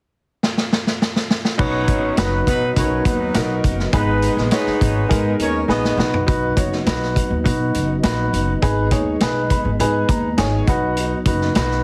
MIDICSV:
0, 0, Header, 1, 7, 480
1, 0, Start_track
1, 0, Key_signature, 5, "major"
1, 0, Tempo, 585938
1, 1303, Time_signature, 4, 2, 24, 8
1, 9695, End_track
2, 0, Start_track
2, 0, Title_t, "Grand piano"
2, 0, Program_c, 0, 0
2, 1292, Note_on_c, 0, 63, 93
2, 1299, Note_on_c, 0, 66, 86
2, 1302, Note_on_c, 0, 71, 99
2, 1679, Note_off_c, 0, 63, 0
2, 1682, Note_off_c, 0, 66, 0
2, 1683, Note_off_c, 0, 71, 0
2, 1778, Note_on_c, 0, 63, 81
2, 1785, Note_on_c, 0, 66, 69
2, 1789, Note_on_c, 0, 71, 81
2, 2161, Note_off_c, 0, 63, 0
2, 2165, Note_off_c, 0, 66, 0
2, 2167, Note_off_c, 0, 71, 0
2, 2260, Note_on_c, 0, 63, 77
2, 2266, Note_on_c, 0, 66, 68
2, 2273, Note_on_c, 0, 71, 77
2, 2642, Note_off_c, 0, 63, 0
2, 2645, Note_off_c, 0, 66, 0
2, 2648, Note_off_c, 0, 71, 0
2, 2736, Note_on_c, 0, 63, 82
2, 2743, Note_on_c, 0, 66, 69
2, 2750, Note_on_c, 0, 70, 83
2, 3120, Note_off_c, 0, 63, 0
2, 3123, Note_off_c, 0, 66, 0
2, 3126, Note_off_c, 0, 70, 0
2, 3217, Note_on_c, 0, 63, 89
2, 3222, Note_on_c, 0, 68, 79
2, 3225, Note_on_c, 0, 71, 101
2, 3600, Note_off_c, 0, 63, 0
2, 3602, Note_off_c, 0, 68, 0
2, 3604, Note_off_c, 0, 71, 0
2, 3699, Note_on_c, 0, 63, 81
2, 3703, Note_on_c, 0, 68, 67
2, 3704, Note_on_c, 0, 73, 87
2, 4081, Note_off_c, 0, 63, 0
2, 4083, Note_off_c, 0, 68, 0
2, 4083, Note_off_c, 0, 73, 0
2, 4167, Note_on_c, 0, 63, 71
2, 4170, Note_on_c, 0, 68, 64
2, 4177, Note_on_c, 0, 70, 81
2, 4555, Note_off_c, 0, 63, 0
2, 4557, Note_off_c, 0, 68, 0
2, 4560, Note_off_c, 0, 70, 0
2, 4654, Note_on_c, 0, 63, 76
2, 4662, Note_on_c, 0, 68, 75
2, 4663, Note_on_c, 0, 71, 84
2, 4884, Note_off_c, 0, 63, 0
2, 4891, Note_off_c, 0, 71, 0
2, 4896, Note_on_c, 0, 63, 73
2, 4899, Note_on_c, 0, 66, 76
2, 4901, Note_off_c, 0, 68, 0
2, 4903, Note_on_c, 0, 71, 84
2, 5090, Note_off_c, 0, 63, 0
2, 5091, Note_off_c, 0, 66, 0
2, 5093, Note_off_c, 0, 71, 0
2, 5132, Note_on_c, 0, 63, 90
2, 5136, Note_on_c, 0, 66, 84
2, 5142, Note_on_c, 0, 71, 99
2, 5327, Note_off_c, 0, 63, 0
2, 5329, Note_off_c, 0, 66, 0
2, 5332, Note_off_c, 0, 71, 0
2, 5375, Note_on_c, 0, 63, 63
2, 5377, Note_on_c, 0, 66, 60
2, 5384, Note_on_c, 0, 73, 70
2, 5569, Note_off_c, 0, 63, 0
2, 5569, Note_off_c, 0, 66, 0
2, 5573, Note_off_c, 0, 73, 0
2, 5622, Note_on_c, 0, 63, 71
2, 5627, Note_on_c, 0, 66, 66
2, 5629, Note_on_c, 0, 71, 83
2, 6003, Note_off_c, 0, 63, 0
2, 6006, Note_off_c, 0, 66, 0
2, 6007, Note_off_c, 0, 71, 0
2, 6095, Note_on_c, 0, 63, 74
2, 6102, Note_on_c, 0, 66, 67
2, 6104, Note_on_c, 0, 71, 76
2, 6480, Note_off_c, 0, 63, 0
2, 6484, Note_off_c, 0, 66, 0
2, 6484, Note_off_c, 0, 71, 0
2, 6580, Note_on_c, 0, 63, 79
2, 6584, Note_on_c, 0, 66, 72
2, 6591, Note_on_c, 0, 71, 91
2, 6963, Note_off_c, 0, 63, 0
2, 6965, Note_off_c, 0, 66, 0
2, 6969, Note_off_c, 0, 71, 0
2, 7062, Note_on_c, 0, 63, 91
2, 7067, Note_on_c, 0, 68, 85
2, 7071, Note_on_c, 0, 71, 95
2, 7254, Note_off_c, 0, 63, 0
2, 7256, Note_off_c, 0, 68, 0
2, 7258, Note_off_c, 0, 71, 0
2, 7304, Note_on_c, 0, 63, 69
2, 7305, Note_on_c, 0, 68, 61
2, 7312, Note_on_c, 0, 73, 69
2, 7494, Note_off_c, 0, 63, 0
2, 7495, Note_off_c, 0, 68, 0
2, 7498, Note_off_c, 0, 73, 0
2, 7552, Note_on_c, 0, 63, 80
2, 7557, Note_on_c, 0, 68, 67
2, 7561, Note_on_c, 0, 71, 88
2, 7793, Note_on_c, 0, 83, 61
2, 7930, Note_off_c, 0, 63, 0
2, 7933, Note_off_c, 0, 68, 0
2, 7935, Note_off_c, 0, 71, 0
2, 8012, Note_off_c, 0, 83, 0
2, 8027, Note_on_c, 0, 63, 75
2, 8030, Note_on_c, 0, 80, 64
2, 8031, Note_on_c, 0, 68, 68
2, 8032, Note_on_c, 0, 71, 85
2, 8251, Note_off_c, 0, 80, 0
2, 8268, Note_on_c, 0, 82, 60
2, 8408, Note_off_c, 0, 63, 0
2, 8410, Note_off_c, 0, 68, 0
2, 8410, Note_off_c, 0, 71, 0
2, 8490, Note_off_c, 0, 82, 0
2, 8500, Note_on_c, 0, 63, 82
2, 8503, Note_on_c, 0, 80, 70
2, 8504, Note_on_c, 0, 68, 72
2, 8512, Note_on_c, 0, 73, 84
2, 8728, Note_off_c, 0, 80, 0
2, 8733, Note_off_c, 0, 63, 0
2, 8745, Note_off_c, 0, 68, 0
2, 8745, Note_on_c, 0, 63, 87
2, 8747, Note_on_c, 0, 78, 69
2, 8749, Note_off_c, 0, 73, 0
2, 8749, Note_on_c, 0, 66, 74
2, 8755, Note_on_c, 0, 71, 83
2, 8970, Note_off_c, 0, 78, 0
2, 9130, Note_off_c, 0, 63, 0
2, 9132, Note_off_c, 0, 66, 0
2, 9135, Note_off_c, 0, 71, 0
2, 9225, Note_on_c, 0, 63, 73
2, 9230, Note_on_c, 0, 66, 64
2, 9233, Note_on_c, 0, 71, 81
2, 9417, Note_off_c, 0, 63, 0
2, 9420, Note_off_c, 0, 66, 0
2, 9421, Note_off_c, 0, 71, 0
2, 9464, Note_on_c, 0, 63, 75
2, 9468, Note_on_c, 0, 66, 74
2, 9473, Note_on_c, 0, 71, 89
2, 9695, Note_off_c, 0, 63, 0
2, 9695, Note_off_c, 0, 66, 0
2, 9695, Note_off_c, 0, 71, 0
2, 9695, End_track
3, 0, Start_track
3, 0, Title_t, "Horn section"
3, 0, Program_c, 1, 61
3, 1303, Note_on_c, 1, 63, 86
3, 1304, Note_on_c, 1, 61, 92
3, 1304, Note_on_c, 1, 73, 100
3, 1306, Note_on_c, 1, 54, 88
3, 1754, Note_off_c, 1, 61, 0
3, 1754, Note_off_c, 1, 63, 0
3, 1754, Note_off_c, 1, 73, 0
3, 1755, Note_off_c, 1, 54, 0
3, 1778, Note_on_c, 1, 54, 77
3, 1780, Note_on_c, 1, 59, 77
3, 1780, Note_on_c, 1, 71, 84
3, 1782, Note_on_c, 1, 63, 74
3, 1972, Note_off_c, 1, 54, 0
3, 1973, Note_off_c, 1, 59, 0
3, 1973, Note_off_c, 1, 71, 0
3, 1974, Note_off_c, 1, 63, 0
3, 2020, Note_on_c, 1, 54, 90
3, 2021, Note_on_c, 1, 59, 99
3, 2021, Note_on_c, 1, 71, 107
3, 2023, Note_on_c, 1, 63, 95
3, 2213, Note_off_c, 1, 54, 0
3, 2213, Note_off_c, 1, 59, 0
3, 2213, Note_off_c, 1, 71, 0
3, 2214, Note_off_c, 1, 63, 0
3, 2267, Note_on_c, 1, 70, 76
3, 2268, Note_on_c, 1, 73, 84
3, 2269, Note_on_c, 1, 61, 69
3, 2457, Note_off_c, 1, 70, 0
3, 2457, Note_off_c, 1, 73, 0
3, 2458, Note_off_c, 1, 61, 0
3, 2499, Note_on_c, 1, 59, 80
3, 2499, Note_on_c, 1, 71, 87
3, 2500, Note_on_c, 1, 54, 82
3, 2506, Note_on_c, 1, 63, 78
3, 2951, Note_off_c, 1, 54, 0
3, 2951, Note_off_c, 1, 59, 0
3, 2951, Note_off_c, 1, 71, 0
3, 2954, Note_off_c, 1, 63, 0
3, 3221, Note_on_c, 1, 56, 84
3, 3222, Note_on_c, 1, 59, 84
3, 3222, Note_on_c, 1, 71, 91
3, 3224, Note_on_c, 1, 63, 86
3, 3559, Note_off_c, 1, 56, 0
3, 3559, Note_off_c, 1, 59, 0
3, 3559, Note_off_c, 1, 71, 0
3, 3560, Note_off_c, 1, 63, 0
3, 3584, Note_on_c, 1, 56, 73
3, 3584, Note_on_c, 1, 68, 80
3, 3586, Note_on_c, 1, 51, 76
3, 3588, Note_on_c, 1, 59, 69
3, 3678, Note_off_c, 1, 56, 0
3, 3678, Note_off_c, 1, 68, 0
3, 3680, Note_off_c, 1, 51, 0
3, 3680, Note_off_c, 1, 59, 0
3, 3699, Note_on_c, 1, 59, 90
3, 3699, Note_on_c, 1, 63, 91
3, 3699, Note_on_c, 1, 71, 97
3, 3700, Note_on_c, 1, 56, 98
3, 4150, Note_off_c, 1, 59, 0
3, 4150, Note_off_c, 1, 63, 0
3, 4150, Note_off_c, 1, 71, 0
3, 4151, Note_off_c, 1, 56, 0
3, 4182, Note_on_c, 1, 59, 76
3, 4182, Note_on_c, 1, 71, 83
3, 4183, Note_on_c, 1, 63, 74
3, 4184, Note_on_c, 1, 56, 78
3, 4373, Note_off_c, 1, 59, 0
3, 4373, Note_off_c, 1, 71, 0
3, 4374, Note_off_c, 1, 56, 0
3, 4374, Note_off_c, 1, 63, 0
3, 4428, Note_on_c, 1, 70, 81
3, 4428, Note_on_c, 1, 73, 95
3, 4431, Note_on_c, 1, 61, 82
3, 4616, Note_off_c, 1, 70, 0
3, 4617, Note_off_c, 1, 73, 0
3, 4618, Note_off_c, 1, 61, 0
3, 4662, Note_on_c, 1, 63, 89
3, 4662, Note_on_c, 1, 75, 96
3, 4666, Note_on_c, 1, 59, 92
3, 4666, Note_on_c, 1, 66, 84
3, 4999, Note_off_c, 1, 63, 0
3, 4999, Note_off_c, 1, 75, 0
3, 5001, Note_off_c, 1, 59, 0
3, 5002, Note_off_c, 1, 66, 0
3, 9695, End_track
4, 0, Start_track
4, 0, Title_t, "Tonewheel organ"
4, 0, Program_c, 2, 16
4, 1310, Note_on_c, 2, 63, 64
4, 1312, Note_on_c, 2, 59, 54
4, 1314, Note_on_c, 2, 54, 58
4, 3204, Note_off_c, 2, 63, 0
4, 3206, Note_off_c, 2, 54, 0
4, 3223, Note_on_c, 2, 56, 63
4, 3224, Note_on_c, 2, 63, 68
4, 4884, Note_off_c, 2, 56, 0
4, 4899, Note_on_c, 2, 54, 62
4, 5111, Note_off_c, 2, 59, 0
4, 5122, Note_off_c, 2, 63, 0
4, 5132, Note_off_c, 2, 54, 0
4, 5137, Note_on_c, 2, 59, 53
4, 5140, Note_on_c, 2, 63, 67
4, 5141, Note_on_c, 2, 54, 57
4, 7044, Note_off_c, 2, 54, 0
4, 7062, Note_on_c, 2, 56, 59
4, 8729, Note_off_c, 2, 56, 0
4, 8751, Note_on_c, 2, 54, 55
4, 9695, Note_off_c, 2, 54, 0
4, 9695, Note_off_c, 2, 59, 0
4, 9695, Note_off_c, 2, 63, 0
4, 9695, End_track
5, 0, Start_track
5, 0, Title_t, "Upright bass"
5, 0, Program_c, 3, 32
5, 1304, Note_on_c, 3, 35, 93
5, 1538, Note_off_c, 3, 35, 0
5, 1538, Note_on_c, 3, 32, 76
5, 1722, Note_off_c, 3, 32, 0
5, 1782, Note_on_c, 3, 30, 90
5, 1964, Note_off_c, 3, 30, 0
5, 2023, Note_on_c, 3, 47, 95
5, 2205, Note_off_c, 3, 47, 0
5, 2265, Note_on_c, 3, 35, 91
5, 2446, Note_off_c, 3, 35, 0
5, 2501, Note_on_c, 3, 39, 70
5, 2683, Note_off_c, 3, 39, 0
5, 2742, Note_on_c, 3, 35, 77
5, 2924, Note_off_c, 3, 35, 0
5, 2981, Note_on_c, 3, 30, 68
5, 3163, Note_off_c, 3, 30, 0
5, 3222, Note_on_c, 3, 32, 95
5, 3495, Note_off_c, 3, 32, 0
5, 3579, Note_on_c, 3, 34, 82
5, 3670, Note_off_c, 3, 34, 0
5, 3941, Note_on_c, 3, 32, 99
5, 4123, Note_off_c, 3, 32, 0
5, 4183, Note_on_c, 3, 44, 98
5, 4364, Note_off_c, 3, 44, 0
5, 4417, Note_on_c, 3, 39, 69
5, 4600, Note_off_c, 3, 39, 0
5, 4656, Note_on_c, 3, 34, 77
5, 4840, Note_off_c, 3, 34, 0
5, 4893, Note_on_c, 3, 35, 88
5, 5078, Note_off_c, 3, 35, 0
5, 5143, Note_on_c, 3, 35, 96
5, 5324, Note_off_c, 3, 35, 0
5, 5381, Note_on_c, 3, 30, 72
5, 5563, Note_off_c, 3, 30, 0
5, 5623, Note_on_c, 3, 35, 87
5, 5896, Note_off_c, 3, 35, 0
5, 5983, Note_on_c, 3, 39, 75
5, 6073, Note_off_c, 3, 39, 0
5, 6108, Note_on_c, 3, 47, 101
5, 6288, Note_off_c, 3, 47, 0
5, 6345, Note_on_c, 3, 30, 77
5, 6526, Note_off_c, 3, 30, 0
5, 6586, Note_on_c, 3, 34, 77
5, 6767, Note_off_c, 3, 34, 0
5, 6825, Note_on_c, 3, 30, 72
5, 7006, Note_off_c, 3, 30, 0
5, 7068, Note_on_c, 3, 32, 91
5, 7300, Note_on_c, 3, 39, 82
5, 7312, Note_off_c, 3, 32, 0
5, 7484, Note_off_c, 3, 39, 0
5, 7540, Note_on_c, 3, 35, 78
5, 7815, Note_off_c, 3, 35, 0
5, 7903, Note_on_c, 3, 32, 74
5, 7995, Note_off_c, 3, 32, 0
5, 8025, Note_on_c, 3, 44, 90
5, 8207, Note_off_c, 3, 44, 0
5, 8264, Note_on_c, 3, 39, 79
5, 8502, Note_on_c, 3, 32, 87
5, 8515, Note_off_c, 3, 39, 0
5, 8686, Note_off_c, 3, 32, 0
5, 8744, Note_on_c, 3, 35, 89
5, 9110, Note_off_c, 3, 35, 0
5, 9222, Note_on_c, 3, 30, 84
5, 9407, Note_off_c, 3, 30, 0
5, 9469, Note_on_c, 3, 35, 86
5, 9695, Note_off_c, 3, 35, 0
5, 9695, End_track
6, 0, Start_track
6, 0, Title_t, "Muted upright bass strokes"
6, 3823, Note_on_c, 9, 29, 43
6, 3905, Note_off_c, 9, 29, 0
6, 9695, End_track
7, 0, Start_track
7, 0, Title_t, "Drums"
7, 354, Note_on_c, 9, 38, 55
7, 436, Note_off_c, 9, 38, 0
7, 471, Note_on_c, 9, 38, 54
7, 553, Note_off_c, 9, 38, 0
7, 594, Note_on_c, 9, 38, 69
7, 676, Note_off_c, 9, 38, 0
7, 712, Note_on_c, 9, 38, 60
7, 794, Note_off_c, 9, 38, 0
7, 835, Note_on_c, 9, 38, 78
7, 916, Note_off_c, 9, 38, 0
7, 951, Note_on_c, 9, 38, 71
7, 1032, Note_off_c, 9, 38, 0
7, 1068, Note_on_c, 9, 38, 91
7, 1150, Note_off_c, 9, 38, 0
7, 1185, Note_on_c, 9, 38, 79
7, 1267, Note_off_c, 9, 38, 0
7, 1301, Note_on_c, 9, 49, 74
7, 1303, Note_on_c, 9, 36, 97
7, 1383, Note_off_c, 9, 49, 0
7, 1385, Note_off_c, 9, 36, 0
7, 1537, Note_on_c, 9, 42, 67
7, 1540, Note_on_c, 9, 36, 90
7, 1619, Note_off_c, 9, 42, 0
7, 1622, Note_off_c, 9, 36, 0
7, 1778, Note_on_c, 9, 42, 74
7, 1784, Note_on_c, 9, 38, 106
7, 1860, Note_off_c, 9, 42, 0
7, 1866, Note_off_c, 9, 38, 0
7, 2024, Note_on_c, 9, 36, 73
7, 2027, Note_on_c, 9, 42, 65
7, 2106, Note_off_c, 9, 36, 0
7, 2109, Note_off_c, 9, 42, 0
7, 2263, Note_on_c, 9, 42, 85
7, 2264, Note_on_c, 9, 36, 90
7, 2345, Note_off_c, 9, 42, 0
7, 2346, Note_off_c, 9, 36, 0
7, 2501, Note_on_c, 9, 36, 85
7, 2502, Note_on_c, 9, 42, 68
7, 2583, Note_off_c, 9, 36, 0
7, 2584, Note_off_c, 9, 42, 0
7, 2738, Note_on_c, 9, 42, 87
7, 2742, Note_on_c, 9, 38, 86
7, 2820, Note_off_c, 9, 42, 0
7, 2824, Note_off_c, 9, 38, 0
7, 2982, Note_on_c, 9, 36, 86
7, 2982, Note_on_c, 9, 42, 56
7, 3064, Note_off_c, 9, 36, 0
7, 3064, Note_off_c, 9, 42, 0
7, 3108, Note_on_c, 9, 38, 34
7, 3190, Note_off_c, 9, 38, 0
7, 3217, Note_on_c, 9, 42, 69
7, 3220, Note_on_c, 9, 36, 110
7, 3299, Note_off_c, 9, 42, 0
7, 3302, Note_off_c, 9, 36, 0
7, 3458, Note_on_c, 9, 42, 71
7, 3540, Note_off_c, 9, 42, 0
7, 3583, Note_on_c, 9, 38, 31
7, 3665, Note_off_c, 9, 38, 0
7, 3694, Note_on_c, 9, 42, 69
7, 3700, Note_on_c, 9, 38, 115
7, 3776, Note_off_c, 9, 42, 0
7, 3782, Note_off_c, 9, 38, 0
7, 3825, Note_on_c, 9, 38, 30
7, 3906, Note_off_c, 9, 38, 0
7, 3942, Note_on_c, 9, 36, 75
7, 3944, Note_on_c, 9, 42, 67
7, 4024, Note_off_c, 9, 36, 0
7, 4026, Note_off_c, 9, 42, 0
7, 4184, Note_on_c, 9, 36, 91
7, 4184, Note_on_c, 9, 42, 85
7, 4266, Note_off_c, 9, 36, 0
7, 4266, Note_off_c, 9, 42, 0
7, 4419, Note_on_c, 9, 42, 71
7, 4501, Note_off_c, 9, 42, 0
7, 4665, Note_on_c, 9, 38, 50
7, 4747, Note_off_c, 9, 38, 0
7, 4789, Note_on_c, 9, 38, 53
7, 4870, Note_off_c, 9, 38, 0
7, 4910, Note_on_c, 9, 38, 80
7, 4991, Note_off_c, 9, 38, 0
7, 5027, Note_on_c, 9, 43, 80
7, 5109, Note_off_c, 9, 43, 0
7, 5145, Note_on_c, 9, 36, 110
7, 5147, Note_on_c, 9, 42, 66
7, 5226, Note_off_c, 9, 36, 0
7, 5229, Note_off_c, 9, 42, 0
7, 5380, Note_on_c, 9, 36, 85
7, 5381, Note_on_c, 9, 42, 67
7, 5462, Note_off_c, 9, 36, 0
7, 5463, Note_off_c, 9, 42, 0
7, 5507, Note_on_c, 9, 38, 30
7, 5588, Note_off_c, 9, 38, 0
7, 5622, Note_on_c, 9, 42, 67
7, 5629, Note_on_c, 9, 38, 105
7, 5704, Note_off_c, 9, 42, 0
7, 5711, Note_off_c, 9, 38, 0
7, 5756, Note_on_c, 9, 38, 30
7, 5838, Note_off_c, 9, 38, 0
7, 5866, Note_on_c, 9, 36, 77
7, 5869, Note_on_c, 9, 42, 63
7, 5948, Note_off_c, 9, 36, 0
7, 5951, Note_off_c, 9, 42, 0
7, 6108, Note_on_c, 9, 36, 88
7, 6109, Note_on_c, 9, 42, 78
7, 6190, Note_off_c, 9, 36, 0
7, 6191, Note_off_c, 9, 42, 0
7, 6344, Note_on_c, 9, 42, 68
7, 6426, Note_off_c, 9, 42, 0
7, 6580, Note_on_c, 9, 42, 86
7, 6584, Note_on_c, 9, 38, 100
7, 6662, Note_off_c, 9, 42, 0
7, 6666, Note_off_c, 9, 38, 0
7, 6829, Note_on_c, 9, 42, 60
7, 6910, Note_off_c, 9, 42, 0
7, 7066, Note_on_c, 9, 36, 97
7, 7067, Note_on_c, 9, 42, 73
7, 7148, Note_off_c, 9, 36, 0
7, 7149, Note_off_c, 9, 42, 0
7, 7299, Note_on_c, 9, 42, 72
7, 7301, Note_on_c, 9, 36, 92
7, 7381, Note_off_c, 9, 42, 0
7, 7383, Note_off_c, 9, 36, 0
7, 7540, Note_on_c, 9, 42, 69
7, 7546, Note_on_c, 9, 38, 111
7, 7622, Note_off_c, 9, 42, 0
7, 7628, Note_off_c, 9, 38, 0
7, 7785, Note_on_c, 9, 36, 77
7, 7785, Note_on_c, 9, 42, 63
7, 7866, Note_off_c, 9, 42, 0
7, 7867, Note_off_c, 9, 36, 0
7, 8028, Note_on_c, 9, 42, 81
7, 8110, Note_off_c, 9, 42, 0
7, 8264, Note_on_c, 9, 36, 86
7, 8264, Note_on_c, 9, 42, 69
7, 8346, Note_off_c, 9, 36, 0
7, 8346, Note_off_c, 9, 42, 0
7, 8500, Note_on_c, 9, 42, 83
7, 8504, Note_on_c, 9, 38, 97
7, 8582, Note_off_c, 9, 42, 0
7, 8586, Note_off_c, 9, 38, 0
7, 8745, Note_on_c, 9, 36, 96
7, 8746, Note_on_c, 9, 42, 56
7, 8827, Note_off_c, 9, 36, 0
7, 8828, Note_off_c, 9, 42, 0
7, 8984, Note_on_c, 9, 42, 73
7, 9066, Note_off_c, 9, 42, 0
7, 9220, Note_on_c, 9, 42, 68
7, 9222, Note_on_c, 9, 36, 87
7, 9302, Note_off_c, 9, 42, 0
7, 9304, Note_off_c, 9, 36, 0
7, 9347, Note_on_c, 9, 38, 31
7, 9429, Note_off_c, 9, 38, 0
7, 9461, Note_on_c, 9, 42, 72
7, 9467, Note_on_c, 9, 38, 108
7, 9543, Note_off_c, 9, 42, 0
7, 9549, Note_off_c, 9, 38, 0
7, 9593, Note_on_c, 9, 38, 29
7, 9675, Note_off_c, 9, 38, 0
7, 9695, End_track
0, 0, End_of_file